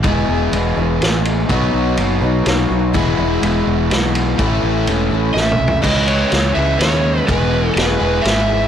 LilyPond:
<<
  \new Staff \with { instrumentName = "Electric slide guitar" } { \time 3/4 \key e \major \tempo 4 = 124 r2. | r2. | r2. | r2 e''4 |
dis''8 cis''4 e''8 cis''4 | b'4 b'4 e''4 | }
  \new Staff \with { instrumentName = "Steel-string acoustic guitar" } { \time 3/4 \key e \major <e, b, e gis b gis'>4 <e gis b gis'>8 <e gis b gis'>8 <e gis b gis'>4 | <b dis' fis' cis''>4 <b dis' fis' cis''>8 <dis' fis' cis''>8 <b dis' fis' cis''>8 <dis' fis' cis''>8 | <e, e gis b e' gis'>4 <gis b e' gis'>4 <gis b e' gis'>4 | <a, a cis' e' a'>4 <a cis' e' a'>8 <cis' e' a'>8 <a cis' e' a'>4 |
<cis e gis b gis'>4 <e gis b gis'>8 <gis b gis'>8 <gis b gis'>4 | <e, b, e gis b gis'>4 <e gis b gis'>4 <e gis b gis'>8 <e gis b gis'>8 | }
  \new Staff \with { instrumentName = "Overdriven electric guitar" } { \clef bass \time 3/4 \key e \major <e, b, e b e' gis'>2. | <b, fis b dis' fis'>2. | <e, b, e gis b e'>2. | <a, e a cis' e'>2. |
<cis e gis cis' e'>4. <cis e gis cis' e'>4. | <e, b, e gis b gis'>4. <e, b, e gis b gis'>4. | }
  \new Staff \with { instrumentName = "Fingered electric bass" } { \clef bass \time 3/4 \key e \major e,,8 e,,8 e,,8 e,,8 a,,4 | b,,8 b,,8 fis,,8 b,,8 b,,8 b,,8 | e,,8 e,,8 e,,8 e,,8 b,,4 | a,,8 a,,8 e,,8 a,,8 a,,8 c,8 |
cis,4 cis,8 cis,8 dis,4 | e,,4 e,,8 e,,8 gis,,4 | }
  \new DrumStaff \with { instrumentName = "Drums" } \drummode { \time 3/4 <bd cymr>4 cymr4 <cymr sn>8 cymr8 | <bd cymr>4 cymr4 <cymr sn>4 | <bd cymr>4 cymr4 <cymr sn>8 cymr8 | <bd cymr>4 cymr4 \tuplet 3/2 { sn8 toml8 tomfh8 } |
<cymc bd>8 cymr8 <cymr sn>4 <cymr sn>4 | <bd cymr>4 <cymr sn>4 <cymr sn>4 | }
>>